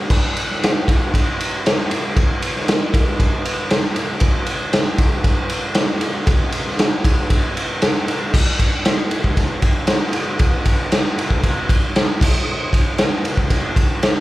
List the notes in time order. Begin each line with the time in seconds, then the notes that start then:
0.10 kick, crash
0.37 ride
0.51 snare
0.63 snare, ride
0.88 kick, ride
1.14 kick, ride
1.40 ride
1.66 snare, ride
1.80 snare
1.91 ride
2.17 kick, ride
2.42 ride
2.57 snare
2.68 snare, ride
2.94 kick, ride
3.20 kick, ride
3.45 ride
3.70 snare, ride
3.84 snare
3.96 ride
4.20 kick, ride
4.46 ride
4.73 snare, ride
4.98 kick, ride
5.24 kick, ride
5.50 ride
5.74 snare, ride
5.89 snare
6.01 ride
6.27 kick, ride
6.52 ride
6.67 snare
6.79 snare, ride
7.04 kick, ride
7.30 kick, ride
7.57 ride
7.82 snare, ride
7.96 snare
8.08 ride
8.34 kick, crash
8.59 kick, ride
8.85 snare, ride
9.11 ride
9.24 kick
9.37 kick, ride
9.62 kick, ride
9.87 snare, ride
10.13 ride
10.39 kick, ride
10.65 kick, ride
10.92 snare, ride
11.18 ride
11.31 kick
11.43 kick, ride
11.69 kick, ride
11.96 snare, ride
12.21 kick, crash
12.73 kick, ride
12.98 snare, ride
13.25 ride
13.37 kick
13.50 kick, ride
13.76 kick, ride
14.03 snare, ride